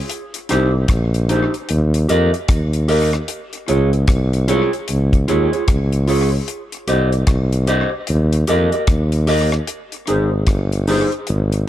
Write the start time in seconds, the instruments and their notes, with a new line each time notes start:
0.09 closed hi-hat
0.34 closed hi-hat
0.49 tuba C2, clean electric guitar D#4 G4 C5, cross-stick, closed hi-hat
0.88 tuba A#1, kick, cross-stick, closed hi-hat
1.14 closed hi-hat
1.29 clean electric guitar D#4 G4 C5, closed hi-hat
1.54 closed hi-hat
1.69 tuba D#2, closed hi-hat
1.94 closed hi-hat
2.08 tuba F2, clean electric guitar G4 A#4 D#5, closed hi-hat
2.34 muted clean electric guitar stroke, closed hi-hat
2.48 tuba D#2, kick, cross-stick, closed hi-hat
2.73 closed hi-hat
2.88 clean electric guitar G4 A#4 D#5, open hi-hat
3.13 cross-stick, closed hi-hat
3.28 closed hi-hat
3.53 closed hi-hat
3.68 tuba C#2, clean electric guitar F4 G#4 C#5, closed hi-hat
3.93 closed hi-hat
4.08 tuba C2, kick, cross-stick, closed hi-hat
4.33 closed hi-hat
4.48 clean electric guitar F4 G#4 C#5, closed hi-hat
4.73 closed hi-hat
4.88 tuba C#2, closed hi-hat
5.13 kick, closed hi-hat
5.28 tuba D#2, clean electric guitar F4 G#4 C#5, closed hi-hat
5.53 clean electric guitar F4 G#4 C#5, closed hi-hat
5.68 tuba C#2, kick, cross-stick, closed hi-hat
5.92 closed hi-hat
6.07 clean electric guitar F4 G#4 C#5, open hi-hat
6.48 closed hi-hat
6.72 closed hi-hat
6.88 tuba C2, clean electric guitar G4 C5 D#5, closed hi-hat
7.12 closed hi-hat
7.27 tuba C2, kick, cross-stick, closed hi-hat
7.53 closed hi-hat
7.67 clean electric guitar G4 C5 D#5, closed hi-hat
8.07 tuba D#2, closed hi-hat
8.33 closed hi-hat
8.47 tuba F2, clean electric guitar G4 A#4 D#5, closed hi-hat
8.72 clean electric guitar G4 A#4 D#5, closed hi-hat
8.87 tuba D#2, kick, cross-stick, closed hi-hat
9.12 closed hi-hat
9.27 clean electric guitar G4 A#4 D#5, open hi-hat
9.52 cross-stick, closed hi-hat
9.67 closed hi-hat
9.92 closed hi-hat
10.07 tuba G#1, clean electric guitar D#4 G#4 C5, closed hi-hat
10.47 tuba G1, kick, cross-stick, closed hi-hat
10.72 closed hi-hat
10.87 clean electric guitar D#4 G#4 C5, open hi-hat
11.12 closed hi-hat
11.27 tuba G#1, closed hi-hat
11.52 closed hi-hat